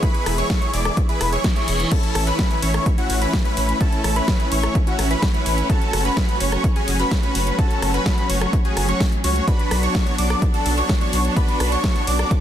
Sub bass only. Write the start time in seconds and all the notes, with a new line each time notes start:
0.26 E1
0.73 E1
1.21 E1
1.68 E1
2.15 A1
2.63 A1
3.10 A1
3.57 A1
4.04 A1
4.52 A1
4.99 A1
5.46 A1
5.93 F#1
6.41 F#1
6.88 F#1
7.35 F#1
7.82 F#1
8.30 F#1
8.77 F#1
9.24 C#2
9.71 B1
10.19 B1
10.66 B1
11.13 B1
11.60 B1
12.07 B1